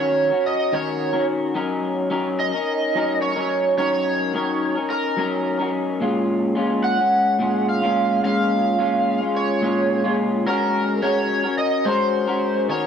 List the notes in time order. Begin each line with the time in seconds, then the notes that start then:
Already playing: D#3 C#4 F#4 A#4 C#5
0.30 C#4 F#4 A#4
0.46 D#5
0.72 D#3 C#4 F#4 A#4 C#5
1.13 D#3 C#4 F#4 A#4
1.55 F#3 C#4 D#4 A#4
2.10 F#3 C#4 D#4 A#4
2.40 D#5
2.53 C#4 D#4 A#4
2.95 F#3 C#4 D#4 A#4
3.22 C#5
3.36 F#3 C#4 D#4 A#4
3.77 F#3 C#4 D#4 A#4 C#5
4.34 F#3 C#4 D#4 A#4
4.75 C#4 D#4 A#4
4.90 A#4
5.16 F#3 C#4 D#4 A#4
5.59 F#3 C#4 D#4 A#4
6.00 A#2 G#3 C#4 F4
6.55 A#2 G#3 C#4 F4
6.84 F#5
6.99 G#3 C#4
7.39 A#2 G#3 C#4 F4
7.69 F5
7.82 A#2 G#3 C#4 F4
8.23 A#2 G#3 C#4 F4 F5
8.78 A#2 G#3 C#4 F4
9.21 G#3 C#4 F4
9.37 C#5
9.62 A#2 G#3 C#4 F4
10.04 A#2 G#3 C#4 F4
10.46 G#3 C#4 F#4 A#4
11.02 G#3 C#4 F#4 A#4 C#5
11.43 C#4 F#4 A#4
11.58 D#5
11.85 G#3 C#4 F#4 A#4 C5
12.27 G#3 C#4 F#4 A#4
12.68 D#3 C#4 F#4 A#4 C#5